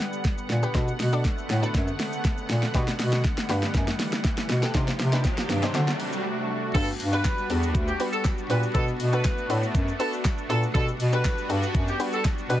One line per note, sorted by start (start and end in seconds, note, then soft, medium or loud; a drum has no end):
0.00 4.71 D3 medium
0.00 0.73 G3 medium
0.00 4.71 B3 medium
0.00 4.71 F#5 medium
0.00 snare medium
0.00 closed hi-hat soft
0.00 riser medium
0.00 shaker soft
0.13 shaker medium
0.25 kick loud
0.25 snare medium
0.25 closed hi-hat medium
0.25 shaker medium
0.38 shaker medium
0.50 0.66 A#2 medium
0.50 snare medium
0.50 closed hi-hat soft
0.50 shaker soft
0.63 0.69 G4 medium
0.63 0.69 B4 loud
0.63 shaker medium
0.74 0.90 B2 loud
0.74 2.73 A3 medium
0.74 0.93 D4 medium
0.74 0.93 F#4 medium
0.74 0.93 A4 medium
0.74 0.93 B4 loud
0.74 kick loud
0.74 snare medium
0.74 closed hi-hat medium
0.74 shaker medium
0.88 shaker medium
1.00 1.24 B2 loud
1.00 snare medium
1.00 open hi-hat medium
1.00 shaker medium
1.13 1.37 D4 medium
1.13 1.37 F#4 medium
1.13 1.37 A4 medium
1.13 1.37 D5 medium
1.13 shaker medium
1.25 kick loud
1.25 snare loud
1.25 closed hi-hat medium
1.25 shaker medium
1.38 shaker medium
1.50 1.66 A2 medium
1.50 snare loud
1.50 open hi-hat medium
1.50 shaker soft
1.63 2.11 D4 medium
1.63 2.11 F#4 medium
1.63 2.11 A4 medium
1.63 2.11 B4 medium
1.63 shaker medium
1.75 1.90 F#2 loud
1.75 kick loud
1.75 snare loud
1.75 closed hi-hat medium
1.75 shaker medium
1.88 shaker medium
2.00 snare loud
2.00 open hi-hat medium
2.00 shaker soft
2.13 shaker medium
2.25 kick loud
2.25 snare loud
2.25 closed hi-hat medium
2.25 shaker medium
2.38 shaker medium
2.50 2.66 A#2 medium
2.50 snare loud
2.50 open hi-hat medium
2.50 shaker soft
2.63 snare medium
2.63 shaker medium
2.74 2.90 B2 loud
2.74 4.73 G3 medium
2.74 3.11 D4 medium
2.74 3.11 F#4 medium
2.74 3.11 G4 medium
2.74 3.12 B4 loud
2.74 kick loud
2.74 snare loud
2.74 closed hi-hat medium
2.74 shaker medium
2.88 snare loud
2.88 shaker medium
2.99 3.24 B2 loud
2.99 snare loud
2.99 open hi-hat medium
2.99 shaker medium
3.12 snare loud
3.12 shaker medium
3.24 kick loud
3.24 snare loud
3.24 closed hi-hat medium
3.24 shaker medium
3.38 snare loud
3.38 shaker medium
3.49 3.65 G2 medium
3.49 3.98 D4 medium
3.49 3.98 F#4 medium
3.49 3.98 G4 medium
3.49 3.98 B4 loud
3.49 snare loud
3.49 open hi-hat medium
3.49 shaker soft
3.63 snare loud
3.63 shaker medium
3.74 3.90 F#2 loud
3.74 kick loud
3.74 snare loud
3.74 closed hi-hat medium
3.74 shaker medium
3.88 snare loud
3.88 shaker medium
4.00 snare loud
4.00 open hi-hat medium
4.00 shaker soft
4.13 snare loud
4.13 shaker medium
4.24 kick loud
4.24 snare loud
4.24 closed hi-hat medium
4.24 shaker medium
4.38 snare loud
4.38 shaker medium
4.50 4.65 B2 loud
4.50 snare loud
4.50 open hi-hat medium
4.50 shaker soft
4.63 4.68 G4 medium
4.63 4.69 A4 loud
4.63 snare loud
4.63 shaker medium
4.74 4.90 C3 loud
4.74 6.73 C3 medium
4.74 5.74 D#3 medium
4.74 4.93 D4 medium
4.74 6.73 D4 medium
4.74 4.93 D#4 medium
4.74 5.74 G4 medium
4.74 4.93 G4 medium
4.74 4.93 C5 loud
4.74 kick loud
4.74 snare loud
4.74 closed hi-hat medium
4.74 shaker medium
4.88 snare loud
4.88 shaker medium
5.00 5.24 C3 loud
5.00 snare loud
5.00 open hi-hat medium
5.00 shaker medium
5.13 5.37 D4 medium
5.13 5.37 D#4 medium
5.13 5.37 G4 medium
5.13 5.37 B4 medium
5.13 snare loud
5.13 shaker medium
5.25 kick loud
5.25 snare loud
5.25 closed hi-hat medium
5.25 shaker medium
5.38 snare loud
5.38 shaker medium
5.50 5.65 G2 medium
5.50 snare loud
5.50 open hi-hat medium
5.50 shaker soft
5.63 5.73 D4 medium
5.63 5.75 D#4 medium
5.63 5.75 G4 medium
5.63 5.74 C5 loud
5.63 snare loud
5.63 shaker medium
5.74 5.91 D3 loud
5.74 6.74 A3 medium
5.74 6.55 D4 medium
5.74 6.55 F#4 medium
5.74 6.74 F#4 medium
5.74 6.55 A4 medium
5.74 6.55 C5 loud
5.74 snare loud
5.74 closed hi-hat medium
5.74 shaker medium
5.88 snare loud
5.88 shaker medium
6.00 open hi-hat medium
6.00 shaker soft
6.13 shaker medium
6.75 6.91 G2 loud
6.75 8.73 G3 medium
6.75 6.93 B3 medium
6.75 10.71 B3 medium
6.75 6.93 D4 medium
6.75 12.60 D4 medium
6.75 10.71 F#4 medium
6.75 6.93 F#4 medium
6.75 6.93 G4 medium
6.75 6.87 A4 loud
6.75 6.93 B4 medium
6.75 kick loud
6.75 closed hi-hat medium
6.75 crash loud
6.75 shaker medium
6.88 shaker medium
7.00 7.24 G2 loud
7.00 open hi-hat medium
7.00 shaker medium
7.13 7.30 B3 medium
7.13 7.30 D4 medium
7.13 7.31 F#4 medium
7.13 7.31 G4 medium
7.13 7.48 B4 medium
7.13 7.31 B4 medium
7.13 shaker medium
7.25 kick loud
7.25 snare loud
7.25 clap loud
7.25 closed hi-hat medium
7.25 shaker medium
7.38 shaker medium
7.50 7.76 E2 medium
7.50 7.74 B3 medium
7.50 7.74 D4 medium
7.50 7.74 F#4 medium
7.50 7.74 G4 medium
7.50 7.74 A4 medium
7.50 open hi-hat medium
7.50 shaker soft
7.63 shaker medium
7.75 7.90 D2 loud
7.75 kick loud
7.75 closed hi-hat medium
7.75 shaker medium
7.88 7.98 G4 medium
7.88 shaker medium
8.00 8.24 B3 medium
8.00 8.24 D4 medium
8.00 8.24 F#4 medium
8.00 8.24 G4 medium
8.00 8.24 B4 medium
8.00 open hi-hat medium
8.00 shaker medium
8.13 8.23 A4 medium
8.13 shaker medium
8.25 kick loud
8.25 snare medium
8.25 clap loud
8.25 closed hi-hat medium
8.25 shaker medium
8.38 shaker medium
8.49 8.65 A#2 loud
8.49 8.62 B3 medium
8.49 8.62 D4 medium
8.49 8.63 F#4 medium
8.49 8.63 G4 medium
8.49 8.62 B4 medium
8.49 8.63 B4 medium
8.49 open hi-hat medium
8.49 shaker soft
8.63 shaker medium
8.75 8.91 B2 loud
8.75 10.73 A3 medium
8.75 8.93 B3 medium
8.75 8.93 D4 medium
8.75 8.93 F#4 medium
8.75 8.87 A4 loud
8.75 8.93 A4 medium
8.75 8.93 B4 medium
8.75 kick loud
8.75 closed hi-hat medium
8.75 shaker medium
8.88 shaker medium
9.00 9.24 B2 loud
9.00 open hi-hat medium
9.00 shaker medium
9.13 9.30 B3 medium
9.13 9.30 D4 medium
9.13 9.31 F#4 medium
9.13 9.31 A4 medium
9.13 9.47 B4 medium
9.13 9.31 B4 medium
9.13 shaker medium
9.25 kick loud
9.25 snare loud
9.25 clap loud
9.25 closed hi-hat medium
9.25 shaker medium
9.38 shaker medium
9.50 9.65 A2 medium
9.50 9.74 B3 medium
9.50 9.74 D4 medium
9.50 9.74 F#4 medium
9.50 9.74 A4 medium
9.50 9.74 B4 medium
9.50 open hi-hat medium
9.50 shaker soft
9.63 shaker medium
9.75 9.90 F#2 loud
9.75 kick loud
9.75 closed hi-hat medium
9.75 shaker medium
9.88 shaker medium
9.99 10.24 B3 medium
9.99 10.24 D4 medium
9.99 10.24 F#4 medium
9.99 10.12 A4 medium
9.99 10.24 A4 medium
9.99 10.24 B4 medium
9.99 open hi-hat medium
9.99 shaker soft
10.13 shaker medium
10.25 kick loud
10.25 snare loud
10.25 clap loud
10.25 closed hi-hat medium
10.25 shaker medium
10.38 shaker medium
10.50 10.66 A#2 medium
10.50 10.62 B3 medium
10.50 10.62 D4 medium
10.50 10.62 F#4 medium
10.50 10.62 A4 medium
10.50 10.63 B4 medium
10.50 open hi-hat medium
10.50 shaker soft
10.63 shaker medium
10.75 10.90 B2 loud
10.75 12.60 G3 medium
10.75 10.93 B3 medium
10.75 12.60 B3 medium
10.75 10.93 D4 medium
10.75 10.93 F#4 medium
10.75 12.60 F#4 medium
10.75 10.93 G4 medium
10.75 10.87 A4 loud
10.75 10.93 B4 medium
10.75 kick loud
10.75 closed hi-hat medium
10.75 shaker medium
10.88 shaker medium
11.00 11.24 B2 loud
11.00 open hi-hat medium
11.00 shaker medium
11.13 11.30 B3 medium
11.13 11.30 D4 medium
11.13 11.30 F#4 medium
11.13 11.30 G4 medium
11.13 11.31 A4 medium
11.13 11.47 B4 medium
11.13 shaker medium
11.25 kick loud
11.25 snare loud
11.25 clap loud
11.25 closed hi-hat medium
11.25 shaker medium
11.38 shaker medium
11.49 11.65 G2 medium
11.49 11.74 B3 medium
11.49 11.74 D4 medium
11.49 11.74 F#4 medium
11.49 11.74 G4 medium
11.49 11.74 A4 medium
11.49 open hi-hat medium
11.49 shaker soft
11.63 shaker medium
11.75 11.90 F#2 loud
11.75 kick loud
11.75 closed hi-hat medium
11.75 shaker medium
11.88 11.99 G4 medium
11.88 shaker medium
11.99 12.24 B3 medium
11.99 12.24 D4 medium
11.99 12.24 F#4 medium
11.99 12.24 G4 medium
11.99 12.24 B4 medium
11.99 open hi-hat medium
11.99 shaker soft
12.13 12.24 A4 medium
12.13 shaker medium
12.25 kick loud
12.25 snare medium
12.25 clap loud
12.25 closed hi-hat medium
12.25 shaker medium
12.38 shaker medium
12.50 12.60 B2 loud
12.50 12.60 B3 medium
12.50 12.60 D4 medium
12.50 12.60 F#4 medium
12.50 12.60 G4 medium
12.50 12.60 B4 medium
12.50 12.60 B4 loud
12.50 open hi-hat medium
12.50 shaker soft